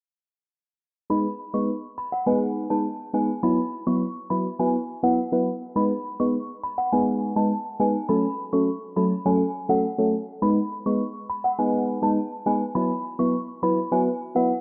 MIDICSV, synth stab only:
0, 0, Header, 1, 2, 480
1, 0, Start_track
1, 0, Tempo, 582524
1, 909, Time_signature, 4, 2, 24, 8
1, 12037, End_track
2, 0, Start_track
2, 0, Title_t, "Synth stab"
2, 0, Program_c, 0, 62
2, 904, Note_on_c, 0, 56, 92
2, 906, Note_on_c, 0, 59, 87
2, 908, Note_on_c, 0, 63, 83
2, 909, Note_on_c, 0, 71, 104
2, 1042, Note_off_c, 0, 56, 0
2, 1043, Note_off_c, 0, 59, 0
2, 1044, Note_off_c, 0, 63, 0
2, 1044, Note_off_c, 0, 71, 0
2, 1265, Note_on_c, 0, 56, 74
2, 1267, Note_on_c, 0, 59, 68
2, 1268, Note_on_c, 0, 63, 67
2, 1270, Note_on_c, 0, 71, 83
2, 1403, Note_off_c, 0, 56, 0
2, 1404, Note_off_c, 0, 59, 0
2, 1404, Note_off_c, 0, 63, 0
2, 1405, Note_off_c, 0, 71, 0
2, 1864, Note_on_c, 0, 56, 85
2, 1867, Note_on_c, 0, 59, 81
2, 1868, Note_on_c, 0, 63, 83
2, 1870, Note_on_c, 0, 71, 100
2, 2198, Note_off_c, 0, 56, 0
2, 2199, Note_off_c, 0, 59, 0
2, 2200, Note_off_c, 0, 63, 0
2, 2201, Note_off_c, 0, 71, 0
2, 2225, Note_on_c, 0, 56, 76
2, 2227, Note_on_c, 0, 59, 69
2, 2229, Note_on_c, 0, 63, 69
2, 2229, Note_on_c, 0, 71, 84
2, 2363, Note_off_c, 0, 56, 0
2, 2363, Note_off_c, 0, 59, 0
2, 2364, Note_off_c, 0, 63, 0
2, 2365, Note_off_c, 0, 71, 0
2, 2583, Note_on_c, 0, 56, 75
2, 2585, Note_on_c, 0, 59, 70
2, 2586, Note_on_c, 0, 63, 70
2, 2587, Note_on_c, 0, 71, 81
2, 2721, Note_off_c, 0, 56, 0
2, 2723, Note_off_c, 0, 59, 0
2, 2723, Note_off_c, 0, 63, 0
2, 2724, Note_off_c, 0, 71, 0
2, 2825, Note_on_c, 0, 54, 90
2, 2826, Note_on_c, 0, 59, 82
2, 2827, Note_on_c, 0, 64, 85
2, 2830, Note_on_c, 0, 71, 106
2, 2963, Note_off_c, 0, 54, 0
2, 2963, Note_off_c, 0, 59, 0
2, 2964, Note_off_c, 0, 64, 0
2, 2965, Note_off_c, 0, 71, 0
2, 3186, Note_on_c, 0, 54, 72
2, 3187, Note_on_c, 0, 59, 65
2, 3190, Note_on_c, 0, 64, 68
2, 3190, Note_on_c, 0, 71, 80
2, 3323, Note_off_c, 0, 54, 0
2, 3324, Note_off_c, 0, 59, 0
2, 3325, Note_off_c, 0, 64, 0
2, 3325, Note_off_c, 0, 71, 0
2, 3546, Note_on_c, 0, 54, 77
2, 3546, Note_on_c, 0, 59, 66
2, 3549, Note_on_c, 0, 64, 68
2, 3550, Note_on_c, 0, 71, 82
2, 3683, Note_off_c, 0, 54, 0
2, 3683, Note_off_c, 0, 59, 0
2, 3685, Note_off_c, 0, 64, 0
2, 3685, Note_off_c, 0, 71, 0
2, 3784, Note_on_c, 0, 54, 91
2, 3785, Note_on_c, 0, 59, 82
2, 3787, Note_on_c, 0, 64, 83
2, 3790, Note_on_c, 0, 71, 99
2, 3922, Note_off_c, 0, 54, 0
2, 3922, Note_off_c, 0, 59, 0
2, 3923, Note_off_c, 0, 64, 0
2, 3925, Note_off_c, 0, 71, 0
2, 4143, Note_on_c, 0, 54, 77
2, 4145, Note_on_c, 0, 59, 68
2, 4147, Note_on_c, 0, 64, 70
2, 4148, Note_on_c, 0, 71, 84
2, 4281, Note_off_c, 0, 54, 0
2, 4282, Note_off_c, 0, 59, 0
2, 4283, Note_off_c, 0, 64, 0
2, 4284, Note_off_c, 0, 71, 0
2, 4383, Note_on_c, 0, 54, 76
2, 4384, Note_on_c, 0, 59, 71
2, 4385, Note_on_c, 0, 64, 67
2, 4388, Note_on_c, 0, 71, 82
2, 4521, Note_off_c, 0, 54, 0
2, 4522, Note_off_c, 0, 59, 0
2, 4523, Note_off_c, 0, 64, 0
2, 4524, Note_off_c, 0, 71, 0
2, 4743, Note_on_c, 0, 56, 94
2, 4745, Note_on_c, 0, 59, 89
2, 4746, Note_on_c, 0, 63, 88
2, 4748, Note_on_c, 0, 71, 100
2, 4881, Note_off_c, 0, 56, 0
2, 4882, Note_off_c, 0, 59, 0
2, 4883, Note_off_c, 0, 63, 0
2, 4884, Note_off_c, 0, 71, 0
2, 5105, Note_on_c, 0, 56, 73
2, 5106, Note_on_c, 0, 59, 68
2, 5108, Note_on_c, 0, 63, 68
2, 5110, Note_on_c, 0, 71, 79
2, 5242, Note_off_c, 0, 56, 0
2, 5243, Note_off_c, 0, 59, 0
2, 5244, Note_off_c, 0, 63, 0
2, 5245, Note_off_c, 0, 71, 0
2, 5704, Note_on_c, 0, 56, 90
2, 5705, Note_on_c, 0, 59, 85
2, 5706, Note_on_c, 0, 63, 84
2, 5708, Note_on_c, 0, 71, 100
2, 6038, Note_off_c, 0, 56, 0
2, 6038, Note_off_c, 0, 59, 0
2, 6039, Note_off_c, 0, 63, 0
2, 6040, Note_off_c, 0, 71, 0
2, 6063, Note_on_c, 0, 56, 72
2, 6064, Note_on_c, 0, 59, 67
2, 6066, Note_on_c, 0, 63, 69
2, 6068, Note_on_c, 0, 71, 82
2, 6201, Note_off_c, 0, 56, 0
2, 6202, Note_off_c, 0, 59, 0
2, 6203, Note_off_c, 0, 63, 0
2, 6204, Note_off_c, 0, 71, 0
2, 6423, Note_on_c, 0, 56, 76
2, 6425, Note_on_c, 0, 59, 70
2, 6426, Note_on_c, 0, 63, 67
2, 6427, Note_on_c, 0, 71, 85
2, 6561, Note_off_c, 0, 56, 0
2, 6562, Note_off_c, 0, 59, 0
2, 6563, Note_off_c, 0, 63, 0
2, 6564, Note_off_c, 0, 71, 0
2, 6664, Note_on_c, 0, 54, 89
2, 6666, Note_on_c, 0, 57, 85
2, 6667, Note_on_c, 0, 61, 86
2, 6668, Note_on_c, 0, 69, 101
2, 6802, Note_off_c, 0, 54, 0
2, 6803, Note_off_c, 0, 57, 0
2, 6803, Note_off_c, 0, 61, 0
2, 6804, Note_off_c, 0, 69, 0
2, 7025, Note_on_c, 0, 54, 76
2, 7027, Note_on_c, 0, 57, 67
2, 7028, Note_on_c, 0, 61, 70
2, 7030, Note_on_c, 0, 69, 82
2, 7162, Note_off_c, 0, 54, 0
2, 7163, Note_off_c, 0, 57, 0
2, 7164, Note_off_c, 0, 61, 0
2, 7165, Note_off_c, 0, 69, 0
2, 7384, Note_on_c, 0, 54, 77
2, 7385, Note_on_c, 0, 57, 72
2, 7387, Note_on_c, 0, 61, 66
2, 7389, Note_on_c, 0, 69, 82
2, 7522, Note_off_c, 0, 54, 0
2, 7523, Note_off_c, 0, 57, 0
2, 7523, Note_off_c, 0, 61, 0
2, 7524, Note_off_c, 0, 69, 0
2, 7625, Note_on_c, 0, 54, 87
2, 7626, Note_on_c, 0, 57, 80
2, 7627, Note_on_c, 0, 61, 84
2, 7630, Note_on_c, 0, 69, 99
2, 7762, Note_off_c, 0, 54, 0
2, 7763, Note_off_c, 0, 57, 0
2, 7764, Note_off_c, 0, 61, 0
2, 7765, Note_off_c, 0, 69, 0
2, 7983, Note_on_c, 0, 54, 76
2, 7985, Note_on_c, 0, 57, 70
2, 7986, Note_on_c, 0, 61, 68
2, 7988, Note_on_c, 0, 69, 85
2, 8122, Note_off_c, 0, 54, 0
2, 8123, Note_off_c, 0, 57, 0
2, 8123, Note_off_c, 0, 61, 0
2, 8124, Note_off_c, 0, 69, 0
2, 8224, Note_on_c, 0, 54, 79
2, 8226, Note_on_c, 0, 57, 71
2, 8228, Note_on_c, 0, 61, 72
2, 8229, Note_on_c, 0, 69, 82
2, 8362, Note_off_c, 0, 54, 0
2, 8363, Note_off_c, 0, 57, 0
2, 8364, Note_off_c, 0, 61, 0
2, 8365, Note_off_c, 0, 69, 0
2, 8585, Note_on_c, 0, 56, 94
2, 8587, Note_on_c, 0, 59, 88
2, 8589, Note_on_c, 0, 63, 82
2, 8589, Note_on_c, 0, 71, 104
2, 8723, Note_off_c, 0, 56, 0
2, 8723, Note_off_c, 0, 59, 0
2, 8724, Note_off_c, 0, 63, 0
2, 8725, Note_off_c, 0, 71, 0
2, 8947, Note_on_c, 0, 56, 75
2, 8949, Note_on_c, 0, 59, 65
2, 8951, Note_on_c, 0, 63, 70
2, 8953, Note_on_c, 0, 71, 82
2, 9084, Note_off_c, 0, 56, 0
2, 9084, Note_off_c, 0, 59, 0
2, 9085, Note_off_c, 0, 63, 0
2, 9087, Note_off_c, 0, 71, 0
2, 9546, Note_on_c, 0, 56, 89
2, 9547, Note_on_c, 0, 59, 80
2, 9549, Note_on_c, 0, 63, 86
2, 9550, Note_on_c, 0, 71, 96
2, 9879, Note_off_c, 0, 56, 0
2, 9879, Note_off_c, 0, 59, 0
2, 9880, Note_off_c, 0, 63, 0
2, 9881, Note_off_c, 0, 71, 0
2, 9904, Note_on_c, 0, 56, 77
2, 9906, Note_on_c, 0, 59, 72
2, 9908, Note_on_c, 0, 63, 70
2, 9909, Note_on_c, 0, 71, 82
2, 10042, Note_off_c, 0, 56, 0
2, 10043, Note_off_c, 0, 59, 0
2, 10044, Note_off_c, 0, 63, 0
2, 10044, Note_off_c, 0, 71, 0
2, 10266, Note_on_c, 0, 56, 78
2, 10268, Note_on_c, 0, 59, 70
2, 10270, Note_on_c, 0, 63, 69
2, 10272, Note_on_c, 0, 71, 86
2, 10403, Note_off_c, 0, 56, 0
2, 10404, Note_off_c, 0, 59, 0
2, 10405, Note_off_c, 0, 63, 0
2, 10406, Note_off_c, 0, 71, 0
2, 10504, Note_on_c, 0, 54, 94
2, 10505, Note_on_c, 0, 59, 84
2, 10508, Note_on_c, 0, 64, 85
2, 10509, Note_on_c, 0, 71, 105
2, 10642, Note_off_c, 0, 54, 0
2, 10643, Note_off_c, 0, 59, 0
2, 10644, Note_off_c, 0, 64, 0
2, 10645, Note_off_c, 0, 71, 0
2, 10866, Note_on_c, 0, 54, 70
2, 10868, Note_on_c, 0, 59, 69
2, 10870, Note_on_c, 0, 64, 67
2, 10871, Note_on_c, 0, 71, 82
2, 11003, Note_off_c, 0, 54, 0
2, 11004, Note_off_c, 0, 59, 0
2, 11005, Note_off_c, 0, 64, 0
2, 11006, Note_off_c, 0, 71, 0
2, 11225, Note_on_c, 0, 54, 78
2, 11228, Note_on_c, 0, 59, 68
2, 11230, Note_on_c, 0, 64, 67
2, 11231, Note_on_c, 0, 71, 81
2, 11363, Note_off_c, 0, 54, 0
2, 11364, Note_off_c, 0, 59, 0
2, 11365, Note_off_c, 0, 64, 0
2, 11365, Note_off_c, 0, 71, 0
2, 11465, Note_on_c, 0, 54, 94
2, 11467, Note_on_c, 0, 59, 83
2, 11468, Note_on_c, 0, 64, 86
2, 11469, Note_on_c, 0, 71, 97
2, 11603, Note_off_c, 0, 54, 0
2, 11603, Note_off_c, 0, 59, 0
2, 11604, Note_off_c, 0, 64, 0
2, 11605, Note_off_c, 0, 71, 0
2, 11824, Note_on_c, 0, 54, 76
2, 11826, Note_on_c, 0, 59, 68
2, 11828, Note_on_c, 0, 64, 71
2, 11829, Note_on_c, 0, 71, 81
2, 11962, Note_off_c, 0, 54, 0
2, 11963, Note_off_c, 0, 59, 0
2, 11964, Note_off_c, 0, 64, 0
2, 11964, Note_off_c, 0, 71, 0
2, 12037, End_track
0, 0, End_of_file